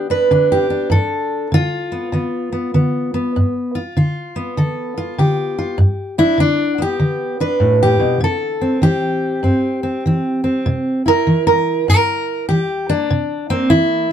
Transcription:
Already playing: D3 B3 G4
0.10 D4 B4
0.31 D3 D4
0.52 G4
0.70 D4
0.90 G2 A4
1.52 D3 F4
1.92 B3
2.12 D3 B3
2.52 B3
2.74 D3 B3
3.14 B3
3.36 G2
3.75 F4
3.97 D3 F4
4.36 B3
4.57 D3 A4
4.97 F4
5.18 D3 G4
5.58 F4
5.78 G2
6.18 D4 E4
6.38 D3 D4
6.78 B3 G4
6.99 D3
7.40 D4 B4
7.60 A2
7.83 G4
8.00 B2
8.21 C3 A4
8.61 C4
8.82 E3 G4
9.43 G2 C4
9.83 C4
10.06 E3 C4
10.44 C4
10.66 C3
11.06 E4 A#4
11.27 E3
11.47 A#4
11.88 G2 A#4
12.49 E3 G4
12.89 A#3 D4
13.10 C3
13.50 A#3 C4
13.70 E3 E4

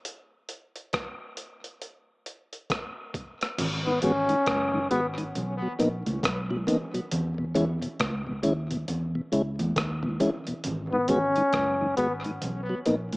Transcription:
0.05 closed hi-hat
0.49 closed hi-hat
0.76 closed hi-hat
0.93 kick, cross-stick, closed hi-hat
1.37 closed hi-hat
1.64 closed hi-hat
1.82 closed hi-hat
2.26 closed hi-hat
2.53 closed hi-hat
2.70 kick, cross-stick, closed hi-hat
3.14 kick, closed hi-hat
3.41 cross-stick, closed hi-hat
3.58 G#1, closed hi-hat, crash, low conga
3.85 G#2 D#3 B3
4.02 G#1 G#3 B3 C#4 F#4, closed hi-hat, low conga
4.29 G#2 D#3, closed hi-hat
4.46 F#1, kick, cross-stick, closed hi-hat, high conga
4.74 G#2 D#3
4.91 G#1 G#3 B3 F#4, closed hi-hat
5.18 G#2 D#3, closed hi-hat
5.35 B1, closed hi-hat, low conga
5.62 B2 F#3
5.79 A#1 A#3 B3 D#4, closed hi-hat
6.06 C#2, closed hi-hat, high conga
6.23 B1, kick, cross-stick, closed hi-hat
6.50 B2 F#3, high conga
6.67 A#3 B3 D#4, closed hi-hat, low conga
6.94 B2 F#3, closed hi-hat
7.11 E2, closed hi-hat, low conga
7.38 E2 B2
7.55 E2 G#3 C#4 E4, closed hi-hat, low conga
7.82 E2 B2, closed hi-hat
8.00 C#2, kick, cross-stick, closed hi-hat, high conga
8.27 E2 B2
8.43 D#2 G#3 C#4 E4, closed hi-hat
8.71 E2 B2, closed hi-hat
8.88 E2, closed hi-hat, low conga
9.15 E2 B2
9.32 C#2 G#3 C#4 E4, closed hi-hat
9.59 E2, closed hi-hat, high conga
9.76 D#2, kick, cross-stick, closed hi-hat
10.03 E2 B2, high conga
10.20 G#3 C#4 E4, closed hi-hat, low conga
10.47 E2 B2, closed hi-hat
10.64 G#1, closed hi-hat, low conga
10.92 G#2 D#3 B3
11.08 G#1 G#3 B3 C#4 F#4, closed hi-hat, low conga
11.36 G#2 D#3, closed hi-hat
11.53 F#1, kick, cross-stick, closed hi-hat, high conga
11.81 G#2 D#3
11.97 G#1 G#3 B3 F#4, closed hi-hat
12.24 G#2 D#3, closed hi-hat
12.42 B1, closed hi-hat, low conga
12.69 B2 F#3
12.86 A#1 A#3 B3 D#4, closed hi-hat
13.12 closed hi-hat, high conga

